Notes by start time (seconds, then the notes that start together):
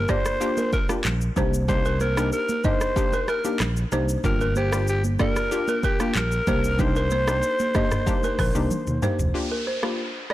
Already playing: A#4
0.09 A#3 D4 F4 G4 C5 D5, kick, cross-stick, mid tom, high conga, shaker
0.25 cross-stick, shaker
0.41 A#3 D4 F4 G4, shaker
0.57 A#4, high conga, shaker
0.73 A#4, kick, shaker
0.89 A#3 D4 F4 G4, cross-stick, high conga, shaker
1.05 A#1, clap, low conga, shaker
1.21 shaker
1.36 C2 A#3 D4 D#4 G4 C5, kick, high conga, low conga, shaker
1.54 shaker
1.68 A#3 D4 D#4 G4 C5, kick, low conga, shaker
1.85 A#4, shaker
2.00 A#4 C5, high conga, shaker
2.17 A#3 D4 D#4 G4, cross-stick, high conga, shaker
2.33 A#4, shaker
2.49 high conga, shaker
2.64 A#3 D4 D#4 G4 C5 D#5, kick, mid tom, high conga, shaker
2.81 cross-stick, shaker
2.96 A#3 D4 D#4 G4, kick, shaker
3.12 A#4, high conga, shaker
3.28 A#4, cross-stick, shaker
3.45 A#3 D4 D#4 G4, high conga, shaker
3.60 A#1, cross-stick, clap, low conga, shaker
3.77 shaker
3.92 C2 A#3 D4 D#4 G4 C5, high conga, low conga, shaker
4.09 shaker
4.24 G1 A#3 D4 F4 G4 A#4, kick, low conga, shaker
4.41 A#4, shaker
4.56 G4 C5, high conga, shaker
4.72 A#3 D4 F4 G4, cross-stick, high conga, shaker
4.88 G4, shaker
5.04 high conga, shaker
5.19 A#3 D4 F4 G4 A#4 D5, kick, cross-stick, mid tom, high conga, shaker
5.36 cross-stick, shaker
5.51 A#3 D4 F4 G4, shaker
5.68 A#4, high conga, shaker
5.83 G4 A#4, kick, shaker
6.00 A#3 D4 F4 G4, cross-stick, high conga, shaker
6.15 A#1 A#4, clap, low conga, shaker
6.32 shaker
6.47 C2 A#3 D4 D#4 G4 C5, kick, high conga, low conga, shaker
6.64 shaker
6.79 A#3 D4 D#4 G4 C5, kick, low conga, shaker
6.96 A#4, shaker
7.11 C5, high conga, shaker
7.27 A#3 D4 D#4 G4, cross-stick, high conga, shaker
7.43 shaker
7.59 high conga, shaker
7.75 A#3 D4 D#4 G4 D#5, kick, cross-stick, mid tom, high conga, shaker
7.91 cross-stick, mid tom, shaker
8.06 A#3 D4 D#4 G4, kick, low conga, shaker
8.23 A#4, high conga, shaker
8.39 A#1 A#4, kick, cross-stick, open hi-hat, shaker
8.55 C2 A#3 D4 D#4 G4, high conga, shaker
8.71 high tom, low conga, shaker
8.87 D#2, mid tom, shaker
9.02 A#3 D4 D#4 G4 C5, mid tom, high conga, low conga, shaker
9.19 F1, floor tom, shaker
9.34 A#3 D4 F4 G4, downlifter
9.52 A#4
9.67 C5
9.83 A#3 D4 F4 G4, cross-stick
10.30 cross-stick